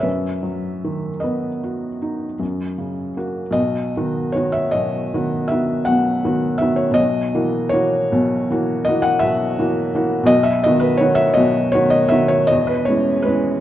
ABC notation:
X:1
M:9/8
L:1/16
Q:3/8=53
K:B
V:1 name="Felt piano"
[Be]6 [Bd]8- [Bd]2 z2 | d4 c e d4 e2 f4 e c | d4 c6 d f e6 | d e d B c e d2 c d e c d B c2 B2 |]
V:2 name="Felt piano"
F,,2 F,2 D,2 B,2 F2 D2 F,,2 C,2 [A,F]2 | [B,,,B,,]2 [D,B,F]2 [D,B,F]2 [B,,,B,,]2 [D,B,F]2 [D,B,F]2 [B,,,B,,]2 [D,B,F]2 [D,B,F]2 | [B,,,B,,]2 [E,A,F]2 [E,A,F]2 [B,,,B,,]2 [E,A,F]2 [E,A,F]2 [B,,,B,,]2 [E,A,F]2 [E,A,F]2 | [B,,,B,,]2 [D,B,F]2 [D,B,F]2 [B,,,B,,]2 [D,B,F]2 [D,B,F]2 [E,,,E,,]2 [G,CE]2 [G,CE]2 |]